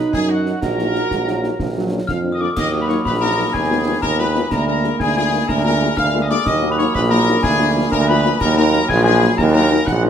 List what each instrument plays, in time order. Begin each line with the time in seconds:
Already playing: trombone section F#3 D#4, euphonium D#4, trumpet section B4, piccolo B5
0.13 tuba F#2, trumpet section G#4, piccolo G#5, concert bass drum, snare
0.29 french horn section F#3 D#4, trumpet section F#4, piccolo F#5
0.45 french horn section F#3 D#4, snare
0.61 tuba A#1, euphonium F#4, trumpet section A#4, piccolo A#5, concert bass drum, snare, crash
0.79 french horn section F#3 A#3 D#4, snare
0.95 french horn section F#3 A#3 D#4, snare
1.11 tuba A#1, trombone section G#3, concert bass drum, snare
1.27 trombone section F#3, french horn section F#3 A#3 D#4, snare
1.43 french horn section F#3 A#3 D#4, snare
1.59 tuba A#1, trombone section F3, concert bass drum, snare
1.76 french horn section F3 A#3 D4, trombone section F#3
1.91 french horn section F3 A#3 D4
2.07 tuba F2, trombone section F3, trumpet section F5, piccolo F6, glockenspiel F6, concert bass drum, snare
2.23 french horn section F3 A#3 D4
2.32 trombone section D#3, trumpet section D#5, glockenspiel D#6, piccolo D#6
2.40 trombone section D3, french horn section F3 A#3 D4, trumpet section D5, glockenspiel D6, piccolo D6
2.56 tuba D#2, trombone section F#3 A#3, trumpet section D#5, glockenspiel D#6, piccolo D#6, concert bass drum, snare, crash
2.72 french horn section F#3 A#3 D#4
2.81 trumpet section B4, piccolo B5, glockenspiel B5
2.88 french horn section F#3 A#3 D#4, trumpet section C#5, piccolo C#6, glockenspiel C#6, snare
3.05 tuba A#1, trumpet section B4, piccolo B5, glockenspiel B5, concert bass drum, snare
3.21 french horn section F#3 A#3 D#4, trumpet section A#4, glockenspiel A#5, piccolo A#5
3.38 french horn section F#3 A#3 D#4
3.52 tuba D#2, trombone section F3 B3, trumpet section G#4, piccolo G#5, glockenspiel G#5, concert bass drum, snare
3.70 french horn section G#3 B3 F4
3.86 french horn section G#3 B3 F4
4.01 tuba D#2, trumpet section A#4, piccolo A#5, glockenspiel A#5, concert bass drum, snare
4.18 french horn section G#3 B3 F4, trumpet section B4, piccolo B5, glockenspiel B5
4.35 french horn section G#3 B3 F4, snare
4.51 tuba D2, trombone section G#3 A#3, trumpet section A#4, piccolo A#5, glockenspiel A#5, concert bass drum, snare, crash
4.67 french horn section G#3 A#3 F4, trumpet section A#4, piccolo A#5, glockenspiel A#5
4.84 french horn section G#3 A#3 F4, snare
4.99 tuba D2, trumpet section G#4, piccolo G#5, glockenspiel G#5, concert bass drum, snare
5.16 french horn section G#3 A#3 F4, trumpet section G#4, piccolo G#5, glockenspiel G#5
5.32 french horn section G#3 A#3 F4
5.48 tuba D2, trumpet section A#4, piccolo A#5, glockenspiel A#5, concert bass drum, snare
5.64 french horn section G#3 A#3 F4, trumpet section A#4, glockenspiel A#5, piccolo A#5
5.82 french horn section G#3 A#3 F4
5.97 tuba D2, trumpet section F5, glockenspiel F6, piccolo F6, concert bass drum, snare
6.14 french horn section G#3 A#3 F4
6.21 trumpet section D#5, piccolo D#6, glockenspiel D#6
6.30 french horn section G#3 A#3 F4, trumpet section D5, piccolo D6, glockenspiel D6, snare
6.45 tuba D#2, trombone section F#3 A#3, trumpet section D#5, piccolo D#6, glockenspiel D#6, concert bass drum, snare, crash
6.62 french horn section F#3 A#3 D#4
6.70 trumpet section B4, piccolo B5, glockenspiel B5
6.78 french horn section F#3 A#3 D#4, trumpet section C#5, piccolo C#6, glockenspiel C#6, snare
6.94 tuba A#1, trumpet section B4, piccolo B5, glockenspiel B5, concert bass drum, snare
7.10 french horn section F#3 A#3 D#4, trumpet section A#4, piccolo A#5, glockenspiel A#5
7.27 french horn section F#3 A#3 D#4
7.43 tuba D2, trombone section F3, trumpet section G#4, glockenspiel G#5, piccolo G#5, concert bass drum, snare
7.59 french horn section F3 A#3 F4
7.76 french horn section F3 A#3 F4
7.91 tuba D2, trumpet section A#4, piccolo A#5, glockenspiel A#5, concert bass drum, snare
8.08 french horn section F3 A#3 F4, trumpet section B4, piccolo B5, glockenspiel B5
8.24 french horn section F3 A#3 F4, snare
8.40 tuba D#2, trombone section F#3 A#3, trumpet section A#4, piccolo A#5, glockenspiel A#5, concert bass drum, snare, crash
8.57 french horn section F#3 A#3 D#4, trumpet section A#4, glockenspiel A#5, piccolo A#5
8.73 french horn section F#3 A#3 D#4, snare
8.88 tuba A#1, trumpet section G#4, glockenspiel G#5, piccolo G#5, concert bass drum, snare
9.04 french horn section F#3 A#3 D#4, trumpet section G#4, piccolo G#5, glockenspiel G#5
9.23 french horn section F#3 A#3 D#4
9.37 tuba D#2, trumpet section A#4, piccolo A#5, glockenspiel A#5, concert bass drum, snare
9.53 french horn section F#3 A#3 D#4, trumpet section A#4, piccolo A#5, glockenspiel A#5
9.71 french horn section F#3 A#3 D#4
9.86 tuba A#1, trumpet section F#5, piccolo F#6, glockenspiel F#6, concert bass drum, snare
10.03 french horn section F#3 A#3 D#4